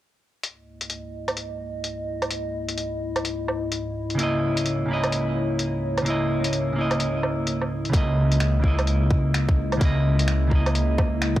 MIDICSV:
0, 0, Header, 1, 5, 480
1, 0, Start_track
1, 0, Tempo, 468750
1, 450, Time_signature, 4, 2, 24, 8
1, 11674, End_track
2, 0, Start_track
2, 0, Title_t, "Clean electric guitar"
2, 0, Program_c, 0, 27
2, 4248, Note_on_c, 0, 49, 84
2, 4276, Note_on_c, 0, 58, 75
2, 4304, Note_on_c, 0, 64, 76
2, 4332, Note_on_c, 0, 75, 96
2, 4960, Note_off_c, 0, 49, 0
2, 4972, Note_on_c, 0, 49, 74
2, 4981, Note_off_c, 0, 58, 0
2, 4995, Note_off_c, 0, 64, 0
2, 5001, Note_on_c, 0, 58, 66
2, 5009, Note_off_c, 0, 75, 0
2, 5028, Note_on_c, 0, 64, 67
2, 5052, Note_on_c, 0, 75, 82
2, 6154, Note_off_c, 0, 49, 0
2, 6167, Note_on_c, 0, 49, 85
2, 6183, Note_off_c, 0, 58, 0
2, 6194, Note_on_c, 0, 58, 76
2, 6197, Note_off_c, 0, 64, 0
2, 6209, Note_off_c, 0, 75, 0
2, 6222, Note_on_c, 0, 64, 79
2, 6248, Note_on_c, 0, 75, 92
2, 6877, Note_off_c, 0, 49, 0
2, 6890, Note_on_c, 0, 49, 74
2, 6900, Note_off_c, 0, 58, 0
2, 6913, Note_off_c, 0, 64, 0
2, 6919, Note_on_c, 0, 58, 68
2, 6927, Note_off_c, 0, 75, 0
2, 6947, Note_on_c, 0, 64, 68
2, 6973, Note_on_c, 0, 75, 81
2, 8074, Note_off_c, 0, 49, 0
2, 8086, Note_on_c, 0, 49, 85
2, 8099, Note_off_c, 0, 58, 0
2, 8112, Note_on_c, 0, 58, 78
2, 8116, Note_off_c, 0, 64, 0
2, 8129, Note_off_c, 0, 75, 0
2, 8140, Note_on_c, 0, 64, 77
2, 8165, Note_on_c, 0, 75, 94
2, 8790, Note_off_c, 0, 49, 0
2, 8803, Note_on_c, 0, 49, 72
2, 8818, Note_off_c, 0, 58, 0
2, 8830, Note_on_c, 0, 58, 64
2, 8833, Note_off_c, 0, 64, 0
2, 8845, Note_off_c, 0, 75, 0
2, 8858, Note_on_c, 0, 64, 67
2, 8884, Note_on_c, 0, 75, 78
2, 9992, Note_off_c, 0, 49, 0
2, 10004, Note_on_c, 0, 49, 85
2, 10018, Note_off_c, 0, 58, 0
2, 10032, Note_off_c, 0, 64, 0
2, 10032, Note_on_c, 0, 58, 78
2, 10044, Note_off_c, 0, 75, 0
2, 10058, Note_on_c, 0, 64, 79
2, 10088, Note_on_c, 0, 75, 92
2, 10714, Note_off_c, 0, 49, 0
2, 10726, Note_on_c, 0, 49, 75
2, 10739, Note_off_c, 0, 58, 0
2, 10750, Note_on_c, 0, 58, 68
2, 10751, Note_off_c, 0, 64, 0
2, 10767, Note_off_c, 0, 75, 0
2, 10780, Note_on_c, 0, 64, 67
2, 10805, Note_on_c, 0, 75, 80
2, 11674, Note_off_c, 0, 49, 0
2, 11674, Note_off_c, 0, 58, 0
2, 11674, Note_off_c, 0, 64, 0
2, 11674, Note_off_c, 0, 75, 0
2, 11674, End_track
3, 0, Start_track
3, 0, Title_t, "Ambient pad"
3, 0, Program_c, 1, 92
3, 436, Note_on_c, 1, 75, 84
3, 437, Note_on_c, 1, 37, 75
3, 438, Note_on_c, 1, 58, 71
3, 439, Note_on_c, 1, 64, 71
3, 442, Note_on_c, 1, 44, 71
3, 4244, Note_off_c, 1, 75, 0
3, 4299, Note_on_c, 1, 73, 89
3, 8082, Note_off_c, 1, 37, 0
3, 8083, Note_off_c, 1, 58, 0
3, 8083, Note_off_c, 1, 64, 0
3, 8085, Note_off_c, 1, 44, 0
3, 8096, Note_off_c, 1, 73, 0
3, 8132, Note_on_c, 1, 49, 79
3, 8132, Note_on_c, 1, 56, 72
3, 8133, Note_on_c, 1, 58, 76
3, 8133, Note_on_c, 1, 64, 89
3, 8134, Note_on_c, 1, 75, 76
3, 11674, Note_off_c, 1, 49, 0
3, 11674, Note_off_c, 1, 56, 0
3, 11674, Note_off_c, 1, 58, 0
3, 11674, Note_off_c, 1, 64, 0
3, 11674, Note_off_c, 1, 75, 0
3, 11674, End_track
4, 0, Start_track
4, 0, Title_t, "Detuned saw bass"
4, 0, Program_c, 2, 39
4, 8124, Note_on_c, 2, 37, 82
4, 11674, Note_off_c, 2, 37, 0
4, 11674, End_track
5, 0, Start_track
5, 0, Title_t, "Drums"
5, 445, Note_on_c, 9, 42, 54
5, 547, Note_off_c, 9, 42, 0
5, 829, Note_on_c, 9, 42, 52
5, 919, Note_off_c, 9, 42, 0
5, 919, Note_on_c, 9, 42, 54
5, 1021, Note_off_c, 9, 42, 0
5, 1311, Note_on_c, 9, 42, 29
5, 1311, Note_on_c, 9, 77, 61
5, 1401, Note_off_c, 9, 42, 0
5, 1401, Note_on_c, 9, 42, 52
5, 1413, Note_off_c, 9, 77, 0
5, 1503, Note_off_c, 9, 42, 0
5, 1884, Note_on_c, 9, 42, 53
5, 1986, Note_off_c, 9, 42, 0
5, 2273, Note_on_c, 9, 42, 27
5, 2273, Note_on_c, 9, 77, 57
5, 2361, Note_off_c, 9, 42, 0
5, 2361, Note_on_c, 9, 42, 54
5, 2376, Note_off_c, 9, 77, 0
5, 2463, Note_off_c, 9, 42, 0
5, 2750, Note_on_c, 9, 42, 52
5, 2842, Note_off_c, 9, 42, 0
5, 2842, Note_on_c, 9, 42, 51
5, 2945, Note_off_c, 9, 42, 0
5, 3234, Note_on_c, 9, 42, 28
5, 3234, Note_on_c, 9, 77, 60
5, 3326, Note_off_c, 9, 42, 0
5, 3326, Note_on_c, 9, 42, 54
5, 3337, Note_off_c, 9, 77, 0
5, 3429, Note_off_c, 9, 42, 0
5, 3567, Note_on_c, 9, 77, 49
5, 3669, Note_off_c, 9, 77, 0
5, 3806, Note_on_c, 9, 42, 56
5, 3909, Note_off_c, 9, 42, 0
5, 4199, Note_on_c, 9, 42, 29
5, 4289, Note_off_c, 9, 42, 0
5, 4289, Note_on_c, 9, 42, 52
5, 4391, Note_off_c, 9, 42, 0
5, 4679, Note_on_c, 9, 42, 55
5, 4768, Note_off_c, 9, 42, 0
5, 4768, Note_on_c, 9, 42, 53
5, 4870, Note_off_c, 9, 42, 0
5, 5156, Note_on_c, 9, 42, 30
5, 5156, Note_on_c, 9, 77, 60
5, 5246, Note_off_c, 9, 42, 0
5, 5246, Note_on_c, 9, 42, 54
5, 5259, Note_off_c, 9, 77, 0
5, 5349, Note_off_c, 9, 42, 0
5, 5725, Note_on_c, 9, 42, 54
5, 5828, Note_off_c, 9, 42, 0
5, 6119, Note_on_c, 9, 42, 28
5, 6119, Note_on_c, 9, 77, 55
5, 6206, Note_off_c, 9, 42, 0
5, 6206, Note_on_c, 9, 42, 50
5, 6221, Note_off_c, 9, 77, 0
5, 6308, Note_off_c, 9, 42, 0
5, 6597, Note_on_c, 9, 42, 52
5, 6685, Note_off_c, 9, 42, 0
5, 6685, Note_on_c, 9, 42, 52
5, 6788, Note_off_c, 9, 42, 0
5, 7075, Note_on_c, 9, 42, 29
5, 7075, Note_on_c, 9, 77, 58
5, 7167, Note_off_c, 9, 42, 0
5, 7167, Note_on_c, 9, 42, 54
5, 7177, Note_off_c, 9, 77, 0
5, 7270, Note_off_c, 9, 42, 0
5, 7406, Note_on_c, 9, 77, 47
5, 7509, Note_off_c, 9, 77, 0
5, 7648, Note_on_c, 9, 42, 54
5, 7750, Note_off_c, 9, 42, 0
5, 7798, Note_on_c, 9, 77, 34
5, 7900, Note_off_c, 9, 77, 0
5, 8039, Note_on_c, 9, 42, 27
5, 8125, Note_on_c, 9, 36, 113
5, 8129, Note_off_c, 9, 42, 0
5, 8129, Note_on_c, 9, 42, 57
5, 8228, Note_off_c, 9, 36, 0
5, 8231, Note_off_c, 9, 42, 0
5, 8516, Note_on_c, 9, 42, 55
5, 8605, Note_off_c, 9, 42, 0
5, 8605, Note_on_c, 9, 26, 95
5, 8605, Note_on_c, 9, 42, 56
5, 8707, Note_off_c, 9, 26, 0
5, 8707, Note_off_c, 9, 42, 0
5, 8844, Note_on_c, 9, 36, 58
5, 8946, Note_off_c, 9, 36, 0
5, 8997, Note_on_c, 9, 42, 31
5, 8997, Note_on_c, 9, 77, 63
5, 9085, Note_off_c, 9, 42, 0
5, 9085, Note_on_c, 9, 42, 56
5, 9100, Note_off_c, 9, 77, 0
5, 9188, Note_off_c, 9, 42, 0
5, 9324, Note_on_c, 9, 36, 94
5, 9427, Note_off_c, 9, 36, 0
5, 9567, Note_on_c, 9, 26, 103
5, 9567, Note_on_c, 9, 42, 58
5, 9670, Note_off_c, 9, 26, 0
5, 9670, Note_off_c, 9, 42, 0
5, 9714, Note_on_c, 9, 36, 101
5, 9816, Note_off_c, 9, 36, 0
5, 9955, Note_on_c, 9, 42, 29
5, 9955, Note_on_c, 9, 77, 61
5, 10045, Note_on_c, 9, 36, 117
5, 10046, Note_off_c, 9, 42, 0
5, 10046, Note_on_c, 9, 42, 54
5, 10058, Note_off_c, 9, 77, 0
5, 10147, Note_off_c, 9, 36, 0
5, 10149, Note_off_c, 9, 42, 0
5, 10437, Note_on_c, 9, 42, 57
5, 10524, Note_off_c, 9, 42, 0
5, 10524, Note_on_c, 9, 26, 101
5, 10524, Note_on_c, 9, 42, 58
5, 10627, Note_off_c, 9, 26, 0
5, 10627, Note_off_c, 9, 42, 0
5, 10766, Note_on_c, 9, 36, 61
5, 10869, Note_off_c, 9, 36, 0
5, 10919, Note_on_c, 9, 42, 31
5, 10919, Note_on_c, 9, 77, 62
5, 11009, Note_off_c, 9, 42, 0
5, 11009, Note_on_c, 9, 42, 59
5, 11021, Note_off_c, 9, 77, 0
5, 11111, Note_off_c, 9, 42, 0
5, 11247, Note_on_c, 9, 36, 104
5, 11249, Note_on_c, 9, 77, 49
5, 11349, Note_off_c, 9, 36, 0
5, 11352, Note_off_c, 9, 77, 0
5, 11486, Note_on_c, 9, 26, 105
5, 11486, Note_on_c, 9, 42, 55
5, 11589, Note_off_c, 9, 26, 0
5, 11589, Note_off_c, 9, 42, 0
5, 11637, Note_on_c, 9, 36, 110
5, 11674, Note_off_c, 9, 36, 0
5, 11674, End_track
0, 0, End_of_file